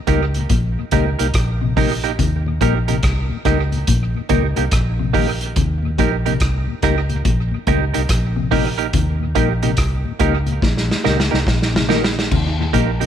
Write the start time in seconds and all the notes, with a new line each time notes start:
0.07 C#2 G3 A#3 D#4 G4 A#4, kick, closed hi-hat
0.34 D#2 A#2, closed hi-hat
0.50 A#1 A#2, kick, closed hi-hat
0.78 D#2 A#2
0.91 C#2 A#2 G3 A#3 D#4 G4 A#4, kick, closed hi-hat
1.19 C2 A#3 D#4 G4 A#4, closed hi-hat
1.34 A#1, kick, cross-stick, closed hi-hat
1.61 D#2 A#2 C3
1.76 C3 G3 A#3 D#4 G4 A#4, kick, open hi-hat
2.04 A#3 D#4 G4 A#4, closed hi-hat
2.19 D#2 C3, kick, closed hi-hat
2.46 D#2 A#2
2.61 A#1 A#2 G3 A#3 D#4 G4 A#4, kick, closed hi-hat
2.88 D#2 A#2 C3 A#3 D#4 G4 A#4, closed hi-hat
3.03 C2, kick, cross-stick, closed hi-hat
3.29 D#2 A#2
3.45 C#2 G3 A#3 D#4 G4 A#4, kick, cross-stick, closed hi-hat
3.72 D#2 A#2, closed hi-hat
3.87 A#1 A#2, kick, closed hi-hat
4.15 D#2 A#2
4.29 C#2 A#2 G3 A#3 D#4 G4 A#4, kick, closed hi-hat
4.56 C2 A#3 D#4 G4 A#4, closed hi-hat
4.71 A#1, kick, cross-stick, closed hi-hat
4.98 D#2 A#2 C3
5.13 D#3 G3 A#3 D#4 G4 A#4, kick, open hi-hat
5.41 closed hi-hat
5.56 D#2 C3, kick, closed hi-hat
5.83 D#2 A#2
5.98 A#1 A#2 G3 A#3 D#4 G4 A#4, kick, closed hi-hat
6.25 D#2 A#2 C3 A#3 D#4 G4 A#4, closed hi-hat
6.40 C2, kick, cross-stick, closed hi-hat
6.67 D#2 A#2
6.82 C#2 G3 A#3 D#4 G4 A#4, kick, cross-stick, closed hi-hat
7.09 D#2 A#2, closed hi-hat
7.25 A#1 A#2, kick, closed hi-hat
7.51 D#2 A#2
7.67 C#2 A#2 G3 A#3 D#4 G4 A#4, kick, closed hi-hat
7.94 C2 A#3 D#4 G4 A#4, closed hi-hat
8.09 A#1, kick, cross-stick, closed hi-hat
8.36 D#2 A#2 C3
8.51 C3 G3 A#3 D#4 G4 A#4, kick, open hi-hat
8.78 A#3 D#4 G4 A#4, closed hi-hat
8.93 D#2 C3, kick, closed hi-hat
9.20 D#2 A#2
9.35 A#1 A#2 G3 A#3 D#4 G4 A#4, kick, closed hi-hat
9.62 D#2 A#2 C3 A#3 D#4 G4 A#4, closed hi-hat
9.77 C2, kick, cross-stick, closed hi-hat
10.05 D#2 A#2
10.19 C#2 G3 A#3 D#4 G4 A#4, kick, closed hi-hat
10.46 D#2 A#2, closed hi-hat
10.62 A#1 A#2, kick, snare
10.77 snare
10.88 D#2 A#2, snare
11.04 C#2 A#2 G3 A#3 D#4 G4 A#4, snare
11.20 snare
11.31 C2 A#3 D#4 G4 A#4, snare
11.47 A#1, kick, snare
11.62 snare
11.74 D#2 A#2 C3, snare
11.89 D#3 G3 A#3 D#4 G4 A#4, snare
12.04 snare
12.19 snare
12.31 D#2 C3, kick, crash
12.58 D#2 A#2
12.73 A#1 A#2 G3 A#3 D#4 G4 A#4, kick, closed hi-hat
13.00 D#2 A#2 C3 A#3 D#4 G4 A#4, closed hi-hat